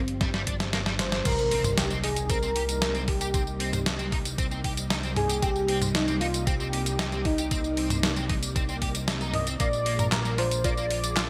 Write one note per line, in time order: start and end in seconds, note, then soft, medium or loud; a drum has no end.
0.00 1.23 G1 medium
0.00 1.21 F3 medium
0.00 1.21 G3 medium
0.00 0.69 C4 loud
0.00 1.21 C4 medium
0.08 closed hi-hat medium
0.21 0.27 G3 medium
0.21 kick loud
0.21 snare medium
0.21 closed hi-hat medium
0.34 0.41 G3 medium
0.34 snare medium
0.34 closed hi-hat soft
0.47 0.54 D4 medium
0.47 kick medium
0.47 closed hi-hat loud
0.60 snare medium
0.60 closed hi-hat soft
0.73 0.77 A#3 medium
0.73 snare medium
0.73 closed hi-hat medium
0.86 0.93 G3 medium
0.86 snare medium
0.86 closed hi-hat soft
0.99 1.27 C5 loud
0.99 snare loud
0.99 closed hi-hat medium
0.99 mid tom medium
1.12 1.19 D4 medium
1.12 snare medium
1.12 closed hi-hat medium
1.25 9.58 C2 medium
1.25 9.56 C3 medium
1.25 9.56 G3 medium
1.25 11.30 A#3 medium
1.25 1.32 C4 medium
1.25 9.56 D#4 medium
1.25 1.74 A#4 loud
1.25 1.77 A#4 loud
1.25 11.30 D5 medium
1.25 kick loud
1.25 closed hi-hat medium
1.25 crash loud
1.25 tambourine soft
1.25 impact medium
1.38 tambourine soft
1.51 1.61 C4 medium
1.51 open hi-hat medium
1.64 1.68 C5 medium
1.64 closed hi-hat medium
1.64 mid tom medium
1.64 tambourine medium
1.77 1.89 G4 loud
1.77 1.89 G4 medium
1.77 snare loud
1.77 closed hi-hat medium
1.77 tambourine soft
1.91 1.97 C4 loud
1.91 closed hi-hat soft
1.91 tambourine soft
2.04 2.08 D#4 medium
2.04 2.31 G#4 medium
2.04 2.28 G#4 medium
2.04 open hi-hat medium
2.16 closed hi-hat medium
2.16 tambourine medium
2.30 2.36 C4 medium
2.30 3.04 A#4 loud
2.30 3.08 A#4 loud
2.30 kick loud
2.30 closed hi-hat medium
2.30 tambourine soft
2.43 2.49 C4 medium
2.43 tambourine soft
2.56 2.62 G4 medium
2.56 open hi-hat medium
2.69 closed hi-hat medium
2.69 tambourine medium
2.82 2.86 D#4 medium
2.82 snare loud
2.82 closed hi-hat medium
2.82 tambourine soft
2.95 3.01 C4 medium
2.95 closed hi-hat soft
2.95 tambourine soft
3.08 4.08 G4 medium
3.08 4.09 G4 medium
3.08 kick loud
3.08 open hi-hat medium
3.21 3.28 G4 medium
3.21 closed hi-hat medium
3.21 tambourine medium
3.34 3.41 C4 medium
3.34 kick loud
3.34 closed hi-hat medium
3.34 tambourine medium
3.47 tambourine soft
3.60 3.70 C4 medium
3.60 open hi-hat medium
3.73 3.77 C5 medium
3.73 closed hi-hat medium
3.73 mid tom medium
3.73 tambourine medium
3.86 snare loud
3.86 closed hi-hat medium
3.86 tambourine soft
3.99 4.06 C4 loud
3.99 closed hi-hat soft
3.99 tambourine soft
4.12 4.16 D#4 medium
4.12 kick loud
4.12 open hi-hat medium
4.25 closed hi-hat medium
4.25 tambourine medium
4.38 4.45 C4 medium
4.38 kick loud
4.38 closed hi-hat medium
4.38 tambourine soft
4.51 4.58 C4 medium
4.51 tambourine soft
4.64 4.71 G4 medium
4.64 kick medium
4.64 open hi-hat medium
4.77 closed hi-hat medium
4.77 tambourine medium
4.90 4.94 D#4 medium
4.90 snare loud
4.90 closed hi-hat medium
4.90 tambourine medium
5.03 5.10 C4 medium
5.03 closed hi-hat soft
5.03 tambourine soft
5.16 5.41 G#4 loud
5.16 5.44 G#4 loud
5.16 open hi-hat medium
5.16 mid tom loud
5.29 5.36 G4 medium
5.29 closed hi-hat medium
5.29 tambourine medium
5.42 5.49 C4 medium
5.42 5.96 G4 loud
5.42 5.91 G4 loud
5.42 kick loud
5.42 closed hi-hat medium
5.42 tambourine soft
5.56 tambourine soft
5.68 5.79 C4 medium
5.68 open hi-hat medium
5.82 5.86 C5 medium
5.82 closed hi-hat medium
5.82 mid tom medium
5.82 tambourine medium
5.94 6.20 D#4 loud
5.94 6.19 D#4 loud
5.94 snare loud
5.94 closed hi-hat medium
5.94 tambourine soft
6.08 6.14 C4 loud
6.08 closed hi-hat soft
6.08 tambourine soft
6.20 6.25 D#4 medium
6.20 6.45 F4 loud
6.20 open hi-hat medium
6.34 closed hi-hat medium
6.34 tambourine medium
6.46 6.54 C4 medium
6.46 7.26 G4 loud
6.46 7.21 G4 loud
6.46 kick loud
6.46 closed hi-hat medium
6.46 tambourine soft
6.60 6.67 C4 medium
6.60 tambourine soft
6.73 6.80 G4 medium
6.73 open hi-hat medium
6.86 closed hi-hat medium
6.86 tambourine medium
6.99 7.03 D#4 medium
6.99 snare loud
6.99 closed hi-hat medium
6.99 tambourine medium
7.12 7.19 C4 medium
7.12 closed hi-hat soft
7.12 tambourine soft
7.25 8.29 D#4 medium
7.25 8.26 D#4 medium
7.25 kick loud
7.25 open hi-hat medium
7.38 7.45 G4 medium
7.38 closed hi-hat medium
7.38 tambourine medium
7.51 7.58 C4 medium
7.51 kick loud
7.51 closed hi-hat medium
7.51 tambourine medium
7.64 tambourine soft
7.77 7.87 C4 medium
7.77 open hi-hat medium
7.90 7.94 C5 medium
7.90 closed hi-hat medium
7.90 mid tom loud
7.90 tambourine medium
8.03 snare loud
8.03 closed hi-hat medium
8.03 tambourine medium
8.16 8.23 C4 loud
8.16 closed hi-hat soft
8.16 tambourine soft
8.29 8.34 D#4 medium
8.29 kick loud
8.29 open hi-hat medium
8.43 closed hi-hat medium
8.43 tambourine medium
8.56 8.62 C4 medium
8.56 kick loud
8.56 closed hi-hat medium
8.56 tambourine medium
8.69 8.76 C4 medium
8.69 tambourine soft
8.82 8.89 G4 loud
8.82 kick medium
8.82 open hi-hat medium
8.95 closed hi-hat soft
8.95 tambourine medium
9.08 9.12 D#4 medium
9.08 snare loud
9.08 closed hi-hat medium
9.08 tambourine medium
9.21 9.31 D#4 loud
9.21 closed hi-hat soft
9.21 tambourine soft
9.34 9.46 D#5 loud
9.34 open hi-hat medium
9.34 mid tom loud
9.47 9.54 C4 medium
9.47 closed hi-hat medium
9.47 tambourine medium
9.60 11.30 A#1 medium
9.60 11.30 G#3 medium
9.60 9.79 A#3 loud
9.60 9.67 A#3 medium
9.60 10.09 D5 loud
9.60 10.14 D5 loud
9.60 kick loud
9.60 closed hi-hat medium
9.60 tambourine medium
9.73 tambourine soft
9.86 9.96 A#3 medium
9.86 open hi-hat medium
9.99 10.03 A#4 medium
9.99 closed hi-hat medium
9.99 mid tom loud
9.99 tambourine medium
10.12 10.23 A#4 loud
10.12 10.37 A#4 loud
10.12 10.40 A#4 loud
10.12 snare loud
10.12 clap medium
10.12 closed hi-hat medium
10.12 tambourine medium
10.25 10.32 A#3 loud
10.25 closed hi-hat soft
10.25 tambourine soft
10.38 10.42 D4 medium
10.38 10.49 F4 loud
10.38 10.63 C5 loud
10.38 10.66 C5 loud
10.38 open hi-hat medium
10.51 closed hi-hat medium
10.51 tambourine medium
10.64 10.71 A#3 medium
10.64 10.83 F4 loud
10.64 11.30 D5 loud
10.64 kick loud
10.64 closed hi-hat medium
10.64 tambourine medium
10.77 10.84 A#3 medium
10.77 tambourine soft
10.90 10.97 F4 medium
10.90 open hi-hat medium
11.04 closed hi-hat medium
11.04 tambourine medium
11.17 11.21 D4 medium
11.17 11.30 F4 loud
11.17 snare loud
11.17 clap loud
11.17 closed hi-hat medium
11.17 tambourine medium